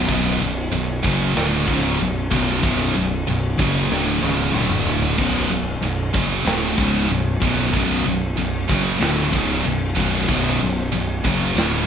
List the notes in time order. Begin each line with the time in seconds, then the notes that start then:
0.07 B0 B1 F#2 B2, kick, crash
0.40 B0 B1 F#2, ride
0.72 B0 B1 F#2, ride
1.03 F#1 F#2 C#3 F#3, kick, ride
1.35 D1 D2 A2 D3, snare, ride
1.68 C#1 C#2 G#2 C#3, kick, ride
1.99 B0 B1 F#2, ride
2.30 B0 B1 F#2 B2, kick, ride
2.61 B0 B1 F#2 B2, kick, ride
2.94 B0 B1 F#2, ride
3.27 B0 B1 F#2, ride
3.58 F#1 F#2 C#3 F#3, kick, ride
3.90 D1 D2 A2 D3, snare
4.22 C#1 C#2 G#2 C#3, high tom
4.54 D1 D2 A2 D3, mid tom
4.70 mid tom
4.86 floor tom
5.02 floor tom
5.18 B0 B1 F#2 B2, kick, crash
5.50 B0 B1 F#2, ride
5.82 B0 B1 F#2, ride
6.13 F#1 F#2 C#3 F#3, kick, ride
6.45 D1 D2 A2 D3, snare, ride
6.77 C#1 C#2 G#2 C#3, kick, ride
7.09 B0 B1 F#2, ride
7.40 B0 B1 F#2 B2, kick, ride
7.73 B0 B1 F#2 B2, kick, ride
8.05 B0 B1 F#2, ride
8.37 B0 B1 F#2, ride
8.69 F#1 F#2 C#3 F#3, kick, ride
9.00 D1 D2 A2 D3, snare, ride
9.32 C#1 C#2 G#2 C#3, kick, ride
9.64 B0 B1 F#2, ride
9.96 B0 B1 F#2 B2, kick, ride
10.28 B0 B1 F#2 B2, kick, crash
10.60 B0 B1 F#2, ride
10.92 B0 B1 F#2, ride
11.23 F#1 F#2 C#3 F#3, kick, ride
11.54 D1 D2 A2 D3, snare, ride